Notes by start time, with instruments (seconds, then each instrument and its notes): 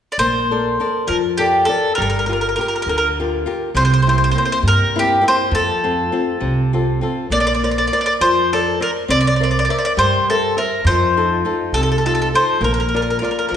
0.12 mandolin D5
0.18 upright bass A#1, nylon-string guitar A#3, mandolin C5
0.51 nylon-string guitar A4 A#4 D5
0.80 nylon-string guitar A4 A#4 D5
1.07 upright bass F2, nylon-string guitar F3, mandolin A#4
1.38 mandolin G4, nylon-string guitar A4 A#4 D5
1.65 mandolin A4, nylon-string guitar A4 A#4 D5
1.95 upright bass G1, nylon-string guitar G3, mandolin A#4
2.02 mandolin A#4
2.10 mandolin A#4
2.19 mandolin A#4
2.26 nylon-string guitar F4 G4 A#4, mandolin A#4
2.33 mandolin A#4
2.41 mandolin A#4
2.49 mandolin A#4
2.56 nylon-string guitar F4 G4 A#4, mandolin A#4
2.61 mandolin A#4
2.68 mandolin A#4
2.76 mandolin A#4
2.82 upright bass D2, mandolin A#4
2.88 nylon-string guitar D3, mandolin A#4
2.98 mandolin A#4
3.20 nylon-string guitar F4 G4 A#4
3.46 nylon-string guitar F4 G4 A#4
3.75 upright bass C2, nylon-string guitar C3, mandolin C5
3.85 mandolin C5
3.94 mandolin C5
4.02 nylon-string guitar A#3, mandolin C5
4.07 nylon-string guitar C4 E4, mandolin C5
4.18 mandolin C5
4.24 mandolin C5
4.31 nylon-string guitar A#3 C4 E4, mandolin C5
4.38 mandolin C5
4.45 mandolin C5
4.52 mandolin C5
4.63 upright bass G2, nylon-string guitar G3
4.68 mandolin A#4
4.96 nylon-string guitar A#3 C4 E4, mandolin G4
5.21 nylon-string guitar A#3 C4 E4
5.28 mandolin C5
5.51 upright bass F2, nylon-string guitar F3, mandolin A4
5.84 nylon-string guitar C4 F4 A4
6.12 nylon-string guitar C4 F4 A4
6.41 upright bass C2, nylon-string guitar C3
6.73 nylon-string guitar C4 F4 A4
7.01 nylon-string guitar C4 F4 A4
7.30 upright bass A#1, nylon-string guitar A#3, mandolin D5
7.40 mandolin D5
7.47 mandolin D5
7.55 mandolin D5
7.63 nylon-string guitar A#4 C5 D5, mandolin D5
7.71 mandolin D5
7.78 mandolin D5
7.87 mandolin D5
7.92 nylon-string guitar A#4 C5 D5, mandolin D5
8.01 mandolin D5
8.06 mandolin D5
8.21 upright bass F2, nylon-string guitar F3, mandolin C5
8.53 mandolin A4, nylon-string guitar A#4 C5 D5
8.80 nylon-string guitar A#4 C5 D5, mandolin A#4
9.08 upright bass C2, nylon-string guitar C4, mandolin D5
9.21 mandolin D5
9.27 mandolin D5
9.36 mandolin D5
9.40 nylon-string guitar A#4 C5 E5, mandolin D5
9.51 mandolin D5
9.59 mandolin D5
9.65 mandolin D5
9.69 nylon-string guitar A#4 C5 E5, mandolin D5
9.78 mandolin D5
9.85 mandolin D5
9.97 upright bass G2, nylon-string guitar G3, mandolin C5
10.30 mandolin A4, nylon-string guitar A#4 C5 E5
10.57 nylon-string guitar A#4 C5 E5, mandolin A#4
10.85 upright bass F2, nylon-string guitar F3, mandolin C5
11.17 nylon-string guitar D#4 F4 A4
11.45 nylon-string guitar D#4 F4 A4
11.72 upright bass C2, nylon-string guitar C3, mandolin A4
11.83 mandolin A4
11.92 mandolin A4
11.98 mandolin A4
12.05 nylon-string guitar D#4 F4 A4, mandolin A4
12.15 mandolin A4
12.22 mandolin A4
12.34 nylon-string guitar D#4 F4 A4, mandolin C5
12.61 upright bass A#1, nylon-string guitar A#3, mandolin A#4
12.74 mandolin A#4
12.80 mandolin A#4
12.89 mandolin A#4
12.94 nylon-string guitar F4 A#4 D5, mandolin A#4
13.02 mandolin A#4
13.10 mandolin A#4
13.19 nylon-string guitar F4 A#4, mandolin A#4
13.23 mandolin A#4, nylon-string guitar D5
13.31 mandolin A#4
13.39 mandolin A#4
13.49 upright bass F2, nylon-string guitar F3, mandolin A#4